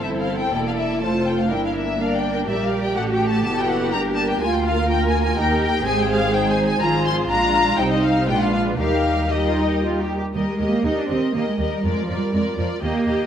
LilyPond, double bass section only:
\new Staff \with { instrumentName = "Double bass section" } { \clef bass \time 3/4 \key g \dorian \tempo 4 = 123 g,,4 e,,4 f,,4 | g,,2 bes,,4 | a,,4 fis,,4 g,,4 | \key ees \major d,2 ees,4 |
aes,,2 aes,,4 | bes,,4 c,4 bes,,4 | ees,2~ ees,8 r8 | ees,8 ees,8 ees,8 ees,8 ees,8 ees,8 |
f,8 f,8 f,8 f,8 ees,8 ees,8 | }